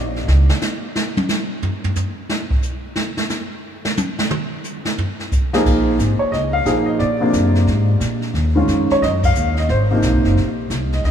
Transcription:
Already playing: upright bass A#1, upright piano D#5
0.16 snare
0.27 upright bass C#2, snare
0.49 snare
0.61 snare, hi-hat pedal
0.96 snare
1.17 high tom
1.28 snare, hi-hat pedal
1.62 floor tom
1.84 floor tom
1.95 floor tom, hi-hat pedal
2.29 snare
2.50 kick
2.62 hi-hat pedal
2.96 snare
3.17 snare
3.29 snare, hi-hat pedal
3.85 snare
3.97 hi-hat pedal, high tom
4.19 snare
4.31 mid tom
4.64 hi-hat pedal
4.85 snare
4.98 floor tom
5.20 snare
5.32 kick, hi-hat pedal
5.53 upright piano F3 A#3 D#4 G#4, snare
5.65 upright bass A#1, brush sweep, kick, snare, crash
5.99 upright bass G#1, kick, snare, hi-hat pedal
6.19 upright piano C#5, muted upright bass stroke
6.32 upright bass C#2, upright piano D#5, brush sweep, kick, snare
6.53 upright piano F5
6.65 upright bass A#1, upright piano F3 A#3 D#4 G#4, kick, snare, hi-hat pedal
6.86 upright piano D#5
6.99 upright bass A#2, upright piano D5, brush sweep, kick, snare
7.20 upright piano C3 F3 A#3 D4
7.33 upright bass F#2, kick, snare, hi-hat pedal
7.55 snare
7.67 upright bass G#2, brush sweep, kick, snare
8.00 upright bass A#2, kick, snare, hi-hat pedal
8.22 snare
8.34 upright bass D#2, brush sweep, kick, snare
8.55 upright piano D#3 G#3 C#4 F4
8.67 upright bass F2, kick, snare, hi-hat pedal
8.90 upright piano C#5, muted upright bass stroke, snare
9.02 upright bass F#2, upright piano D#5, brush sweep, kick, snare
9.23 upright piano F5, kick, crash
9.35 upright bass D#2, hi-hat pedal
9.57 upright piano D#5, snare
9.69 upright bass G#1, upright piano C5, brush sweep, kick, snare
9.91 upright piano C3 F3 A#3 D#4
10.02 upright bass B1, kick, snare, hi-hat pedal
10.14 upright bass G#1
10.24 upright bass F#1, snare
10.36 upright bass A#1, brush sweep, kick, snare
10.70 upright bass C2, kick, snare, hi-hat pedal
10.92 upright piano D#5, snare
11.04 upright bass C#2, upright piano D#5, brush sweep, kick, snare

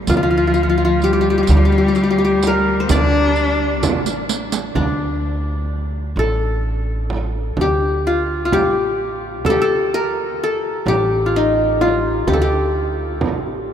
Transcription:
0.07 upright bass D2, cello F3, qanun F4, riq, frame drum
0.17 qanun F4
0.23 qanun F4
0.31 qanun F4
0.37 qanun F4
0.47 qanun F4
0.54 qanun F4, riq
0.63 qanun F4
0.69 qanun F4
0.78 qanun F4
0.85 qanun F4
1.00 cello G3, qanun G4, riq
1.13 qanun G4
1.21 qanun G4
1.30 qanun G4
1.38 qanun G4
1.43 qanun G4
1.47 upright bass D2, riq, frame drum
1.51 qanun G4
1.57 qanun G4
1.65 qanun G4
1.72 qanun G4
1.78 qanun G4
1.88 qanun G4
1.95 qanun G4, riq
2.03 qanun G4
2.10 qanun G4
2.18 qanun G4
2.25 qanun G4
2.43 riq, frame drum
2.47 qanun A#4
2.80 qanun C5
2.89 upright bass D2, cello D4, qanun D5, riq, frame drum
3.36 riq
3.82 upright bass A1, riq, frame drum
4.06 riq
4.29 riq
4.52 riq
4.75 upright bass D2, qanun D4, frame drum
6.16 upright bass A1, qanun A4, frame drum
7.10 frame drum
7.57 upright bass D2, frame drum
7.61 qanun G4
8.07 qanun F4
8.45 qanun F4
8.50 upright bass A1, qanun G4, frame drum
9.44 upright bass D2, qanun A4, frame drum
9.50 qanun G4
9.62 qanun A4
9.94 qanun A#4
10.44 qanun A4
10.86 upright bass A1, qanun G4, frame drum
11.26 qanun F4
11.36 qanun D#4
11.81 qanun F4, frame drum
12.27 upright bass D2, qanun G4, frame drum
12.33 qanun A4
12.42 qanun G4
13.21 upright bass A1, frame drum

